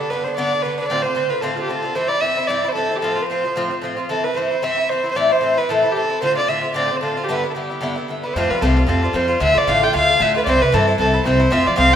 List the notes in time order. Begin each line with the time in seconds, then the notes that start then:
0.00 D3 B3 D4 A4
0.10 G2 D3 B3 D4 B4
0.24 D3 B3 D4 C5
0.36 G2 D3 B3 D4 D5
0.53 D3 B3 D4
0.63 G2 D3 B3 B4
0.67 D4
0.78 D3 B3 D4 B4
0.88 A2 D3 C4 D5
0.92 F4
1.02 C4 F4 C5
1.07 D3
1.15 A2 D3 C4 F4
1.29 D3 C4 F4 B4
1.41 A2 D3 C4 F4 A4
1.56 D3 C4 F4
1.62 G4
1.68 A2 D3 C4 F4 A4
1.82 D3 C4 F4
1.95 G2 E3 C4 E4 C5
2.08 E3 C4 E4 D5
2.21 G2 E3 C4 E4 E5
2.37 E3 C4 E4
2.47 G2 E3 C4 E4 D5
2.64 E3 C4 E4
2.68 C5
2.74 G2 E3 C4 A4
2.78 E4
2.91 E3 C4 E4
2.96 G4
3.00 A2 F3 C4 A4
3.04 F4
3.15 F3 C4 F4
3.22 B4
3.28 A2 F3 C4 F4 C5
3.44 F3 C4 F4
3.56 A2 F3 C4 F4
3.71 F3 C4 F4
3.82 A2 F3 C4 F4
3.97 F3 C4 F4
4.09 G2 E3 C4 E4 A4
4.24 E3 C4 E4 B4
4.34 G2 E3 C4 E4 C5
4.50 E3 C4 E4
4.62 G2 E3 C4 E4 E5
4.78 E3 C4 E4
4.89 G2 E3 C4 E4 C5
5.04 E3 C4 E4
5.11 C5
5.15 A2 E3 C4 E4 D5
5.30 E3 C4 E4 C5
5.41 A2 E3 C4 E4
5.57 E3 C4 E4 B4
5.69 A2 E3 C4 E4 A4
5.82 E3 C4 E4
5.92 A2 E3 G4
5.96 C4 E4 A4
6.10 E3 C4 E4
6.22 A2 D3 C4 F4 C5
6.35 D3 C4 F4 D5
6.47 A2 D3 C4 F4 E5
6.61 D3 C4 F4
6.74 A2 D3 C4 F4 D5
6.89 D3 C4 F4
6.96 C5
7.01 A2 D3 C4 F4 A4
7.17 D3 C4 F4
7.21 G4 A4
7.29 G2 D3 B3 E4 B4
7.43 D3 B3 E4
7.50 A4
7.55 G2 D3 B3 E4 G4
7.70 D3 B3 E4
7.81 G2 D3 B3 E4
7.96 D3 B3 E4
8.08 G2 D3 B3 E4
8.23 D3 B3 E4 B4
8.34 F2 A2 G3 C4 C5
8.38 F4
8.50 F3 G3 C4 F4 B4
8.61 C2 A2 G3 C4 F4 A4
8.77 G3 C4 F4
8.87 F2 A2 G3 C4 F4 A4
9.03 G3 C4 F4
9.13 F2 A2 G3 C4 F4 C5
9.28 G3 C4 F4
9.40 D2 A2 D3 A3 F4 E5
9.54 D3 A3 F4
9.58 D5
9.67 A1 A2 D3 A3 F4 F5
9.81 D3 A3 F4 G5
9.93 D2 A2 D3 A3 F4 F5
10.08 D3 A3 F4
10.20 D2 A2 D3 A3 F4 E5
10.34 D3 A3 F4 B4
10.45 C2 G2 E3 C4 E4 C5 D5
10.62 C3 E3 C4 E4 B4
10.72 G2 E3 C4 E4 A4
10.88 E3 C4 E4
10.98 C2 G2 E3 C4 E4 A4
11.14 E3 C4 E4
11.25 C2 G2 E3 C4 E4 C5
11.40 E3 C4 E4
11.51 F2 A2 F3 C4 F4 E5
11.65 F3 C4 F4 D5
11.76 C2 A2 F3 C4 F4 F5
11.91 C4 F4